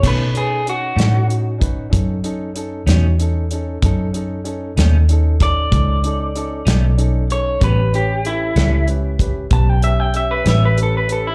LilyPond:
<<
  \new Staff \with { instrumentName = "Clean electric guitar" } { \time 12/8 \key b \dorian \tempo 4. = 63 b'8 gis'8 fis'4 r1 | r2 r8 d''2. cis''8 | b'8 g'8 e'4 r4 a''16 g''16 e''16 g''16 e''16 b'16 e''16 b'16 a'16 b'16 a'16 e'16 | }
  \new Staff \with { instrumentName = "Grand piano" } { \time 12/8 \key b \dorian <cis' dis' a'>8 <cis' dis' a'>8 <cis' dis' fis'>8 <cis' dis' a'>8 <cis' dis' fis'>8 <cis' dis' b'>8 <cis' dis' a'>8 <cis' dis' a'>8 <cis' dis' a'>8 <cis' dis' fis'>8 <cis' dis' a'>8 <cis' dis' a'>8 | <cis' dis' a'>8 <cis' dis' a'>8 <cis' dis' a'>8 <cis' dis' a'>8 <cis' dis' a'>8 <cis' dis' a'>8 <cis' dis' a'>8 <cis' dis' a'>8 <cis' dis' a'>8 <cis' dis' a'>8 <cis' dis' a'>8 <cis' dis' a'>8 | <cis' g' b'>8 <cis' g' cis''>8 <cis' g' a'>8 <cis' g' a'>8 <cis' g' b'>8 <cis' g' b'>8 <cis' g' b'>8 <cis' g' b'>8 <cis' g' cis''>8 <cis' g' b'>8 <cis' g' b'>8 <cis' g' b'>8 | }
  \new Staff \with { instrumentName = "Clean electric guitar" } { \clef bass \time 12/8 \key b \dorian <b, dis a cis'>8 r4 <b, dis a cis'>8 r2 r8 <b, dis a cis'>8 r4 | r4. <b, dis a cis'>8 r2 r8 <b, dis a cis'>8 r4 | <a, g b cis'>8 r4 <a, g b cis'>8 r2 r8 <a, g b cis'>8 r4 | }
  \new Staff \with { instrumentName = "Fingered electric bass" } { \clef bass \time 12/8 \key b \dorian b,4. a,4. fis,4. e,4. | fis,4. dis,4. cis,4. b,,4. | a,,4. cis,4. b,,4. a,,4. | }
  \new DrumStaff \with { instrumentName = "Drums" } \drummode { \time 12/8 <cymc hh bd>8 hh8 hh8 <hh sn>8 hh8 <hh bd>8 <hh bd>8 hh8 hh8 <hh sn>8 hh8 hh8 | <hh bd>8 hh8 hh8 <hh sn>8 hh8 <hh bd sn>8 <hh bd>8 hh8 hh8 <hh sn>8 hh8 hh8 | <hh bd>8 hh8 hh8 <hh sn>8 hh8 <hh bd>8 <hh bd>8 hh8 hh8 <hh sn>8 hh8 hh8 | }
>>